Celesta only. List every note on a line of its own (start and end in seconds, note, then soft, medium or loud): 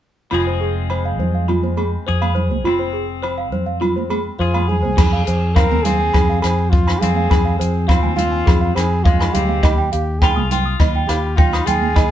0.32 0.42 F4 medium
0.47 0.56 C5 medium
0.61 0.70 G#4 medium
0.90 1.00 C5 medium
1.05 1.14 F5 medium
1.19 1.29 C5 medium
1.35 1.44 F5 medium
1.48 1.58 F4 medium
1.63 1.72 C5 medium
1.77 1.87 G#4 medium
2.06 2.16 C5 medium
2.21 2.31 F5 medium
2.35 2.45 C5 medium
2.50 2.59 C5 medium
2.65 2.74 F4 medium
2.79 2.89 C5 medium
2.93 3.03 G#4 medium
3.23 3.32 C5 medium
3.38 3.47 F5 medium
3.52 3.62 C5 medium
3.66 3.76 F5 medium
3.81 3.91 F4 medium
3.96 4.05 C5 medium
4.10 4.20 G#4 medium
4.39 4.49 C5 medium
4.54 4.63 F5 medium
4.68 4.78 C5 medium
4.83 4.92 C5 medium
4.97 5.07 G#4 medium
5.13 5.22 F5 medium
5.27 5.37 C5 medium
5.56 5.66 F5 medium
5.71 5.80 G#5 medium
5.85 5.95 F5 medium
6.00 6.09 G#5 medium
6.14 6.24 G#4 medium
6.29 6.38 F5 medium
6.44 6.53 C5 medium
6.72 6.82 F5 medium
6.87 6.96 G#5 medium
7.01 7.11 F5 medium
7.17 7.26 F5 medium
7.30 7.40 G#4 medium
7.45 7.54 F5 medium
7.59 7.69 C5 medium
7.88 7.98 F5 medium
8.03 8.12 G#5 medium
8.16 8.27 F5 medium
8.32 8.41 G#5 medium
8.46 8.56 G#4 medium
8.61 8.70 F5 medium
8.75 8.85 C5 medium
9.05 9.14 F5 medium
9.20 9.29 G#5 medium
9.34 9.44 F5 medium
9.49 9.58 F5 medium
9.63 9.73 D#5 medium
9.78 9.87 G5 medium
9.92 10.02 F5 medium
10.22 10.31 G5 medium
10.36 10.45 D#6 medium
10.51 10.61 G5 medium
10.66 10.75 D#6 medium
10.80 10.89 D#5 medium
10.95 11.04 G5 medium
11.09 11.18 F5 medium
11.38 11.47 G5 medium
11.53 11.62 D#6 medium
11.68 11.77 G5 medium
11.82 11.91 G5 medium
11.96 12.05 D#5 medium